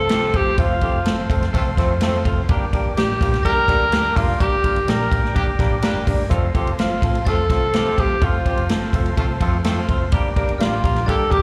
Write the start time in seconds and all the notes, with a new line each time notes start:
Already playing: C2 A4 C5 F5 A5 C6 A6
0.09 F3 A3 C4 F4 G4 A4, snare, ride
0.34 G1 F3 A3 C4 F4 G4 A4 G6, kick, ride
0.58 F1 F3 A3 C4 F4 A4 F6, kick, ride
0.81 F3 A3 C4 F4 G4 A4, kick, ride
0.93 F1
1.06 G1 F3 A3 C4 F4 A4, snare, ride
1.30 F1 F3 A3 C4 F4 A4, kick, ride
1.43 snare, ride
1.53 C2 F3 A3 C4 F4 A4, kick, ride
1.75 F2 F3 A3 C4 F4, kick, snare, ride
1.79 A4
2.01 F3 A3 C4 F4 A4, snare, ride
2.25 F1 F3 A3 C4 F4 A4, kick, ride
2.48 G1 G3 A#3 D4 G4 A#4 D5 G5 D6, kick, ride
2.73 G3 A#3 D4 G4 A#4, kick, ride
2.85 G1
2.97 A1 G3 A#3 D4 G4 A#4 G6, snare, ride
3.20 A#1 G3 A#3 D4 F4 G4 A#4, kick, ride
3.34 snare, ride
3.43 G2 G3 A#3 D4 G4 A#4 A#6, kick, ride
3.68 D2 G3 A#3 D4 G4 A4, kick, snare, ride
3.91 G3 A#3 D4 G4 A4 A#4, snare, ride
4.15 F1 G3 A#3 D4 F4 G4 A#4 F6, kick, open hi-hat, ride
4.40 G1 G3 A#3 D4 G4 A#4 G6, kick, hi-hat pedal, ride
4.64 G3 A#3 D4 F4 G4 A#4, kick, ride
4.75 G1, ride
4.86 A#1 G3 A#3 D4 G4 A#4 A#6, snare, ride
4.90 A#4
5.11 A1 G3 A#3 D4 G4 A#4, kick, ride
5.25 snare
5.35 G3 A#3 D4 G4 A#4, kick, ride
5.45 G1
5.58 A#1 G3 A#3 D4 G4 A#4, kick, snare, ride
5.71 A1
5.81 G3 A#3 D4 G4 A#4, snare, ride
5.94 G1
6.06 F1 G3 A#3 D4 G4 A#4, kick, open hi-hat, ride
6.17 G1
6.29 F1 F3 A3 C4 F4 A4 C5 F5 A5 C6, kick, hi-hat pedal, ride
6.55 F3 A3 C4 F4 G4 A4, kick, ride
6.66 F1, ride
6.78 G1 F3 A3 C4 F4 A4 F6, snare, ride
7.02 A1 F3 A3 C4 F4 A4, kick, ride
7.15 ride
7.25 F2 F3 A3 C4 F4 A4 A6, kick, ride
7.48 C2 F3 A3 C4 F4 A4, kick, snare, ride
7.72 F3 A3 C4 F4 G4 A4, snare, ride
7.97 G1 F3 A3 C4 F4 G4 A4 G6, kick, ride
8.22 F1 F3 A3 C4 F4 A4 F6, kick, ride
8.46 F3 A3 C4 F4 G4 C5, kick, ride
8.57 F1, ride
8.69 G1 F3 A3 C4 F4 A4, snare, ride
8.93 F1 F3 A3 C4 F4 A4, kick, ride
9.06 ride
9.17 C2 F3 A3 C4 F4 A4, kick, ride
9.40 F2 F3 A3 C4 F4 A4, kick, ride
9.64 F3 A3 C4 F4 A4, snare, ride
9.89 F1 F3 A3 C4 F4 A4, kick, ride
10.11 G1 G3 A#3 D4 G4 A#4 D5 G5 A#5 D6, kick, ride
10.36 G3 A#3 D4 G4 A#4, kick, ride
10.49 G1, ride
10.58 A1 G3 A#3 D4 F4 G4 A#4 F6, snare, ride
10.84 A#1 G3 A#3 D4 F4 G4 A#4, kick, ride
10.96 snare, ride
11.06 G2 G3 A#3 D4 G4 A4 A#4 A6, kick, ride
11.30 D2 G3 A#3 D4 G4 A#4 G6, kick, ride